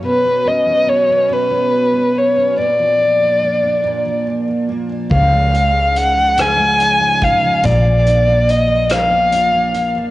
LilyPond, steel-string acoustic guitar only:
\new Staff \with { instrumentName = "Steel-string acoustic guitar" } { \clef bass \time 6/8 \key des \mixolydian \tempo 4. = 47 b,16 fis16 cis'16 fis16 b16 cis'16 b,16 fis16 cis'16 fis16 b16 cis'16 | bes,16 f16 d'16 f16 bes16 d'16 bes,16 f16 d'16 f16 bes16 d'16 | des16 aes16 ees'16 aes16 ees'16 f16 des16 aes16 ees'16 aes16 ees'16 f16 | bes,16 bes16 d'16 bes8 f16 bes,16 bes16 d'16 bes16 d'16 f16 | }